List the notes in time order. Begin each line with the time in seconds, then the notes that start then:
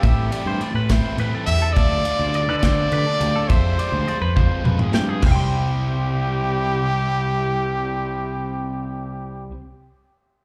0.01 A2 E3 A3 C4 E4 G4 E5, kick, ride
0.32 E3 A3 C4 E4 D5, ride
0.45 G2 C5
0.61 D5, ride
0.74 A2 B4
0.89 E3 A3 C4 E4 C5, kick, snare, ride
1.18 A2 E3 A3 C4 E4 B4, ride
1.34 A4
1.46 E2 E3 A3 C4 E4 G4 E5, ride
1.62 A4
1.73 D2 D3 D5, kick, ride
1.77 A3 D4 F4 E5
2.05 D3 A3 D4 F4 D5, ride
2.19 D2 C5
2.34 D5, ride
2.49 D3 B4
2.59 D5, kick, snare, ride
2.63 D3 A3 D4 F4 C5
2.92 D3 A3 D4 F4 B4, ride
3.06 A4
3.20 D2 D3 A3 D4 F4 G4, ride
3.36 A4
3.48 F2 F3 G#3 C4 F4 C5 E5, kick, ride
3.78 F3 G#3 C4 F4 D5, ride
3.92 D2 C5
4.08 D5, ride
4.21 F2 B4
4.36 F3 G#3 C4 F4 C5, kick, high tom
4.64 F2 F3 G#3 C4 F4 B4, mid tom
4.79 G#4, mid tom
4.93 G2 F3 G#3 C4 F4 G4, snare
5.09 G#4
5.21 C2 C3 G3 C4 E4 G4 C5, kick, floor tom, crash
5.28 E5
5.32 G5 C6